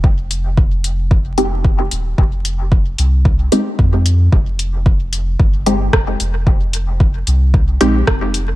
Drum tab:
HH |-x-x-x-x|-x-x-x-x|-x-x-x-x|-x-x-x-x|
SD |--------|--------|------r-|------r-|
BD |o-o-o-o-|o-o-o-o-|o-o-o-o-|o-o-o-o-|